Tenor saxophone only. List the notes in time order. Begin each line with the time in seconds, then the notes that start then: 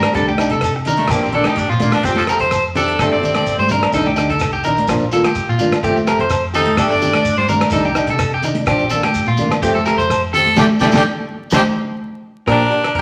0.98 A3
1.11 A#3
1.22 C4
1.34 D4
1.47 D#4
1.59 D4
1.71 F3
1.82 A#3
1.93 D4
2.05 C4
2.18 F3
2.76 D4
3.01 C4
6.55 D#4
6.78 D4
10.35 A4
10.60 G4
10.81 G4
10.97 G4
11.56 G4
12.51 D4